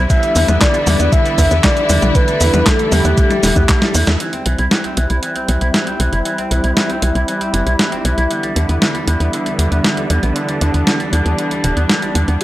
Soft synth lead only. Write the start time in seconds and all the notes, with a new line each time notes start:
0.10 E5
0.61 D5
1.12 E5
1.64 D5
2.15 B4
2.66 A4
2.92 G4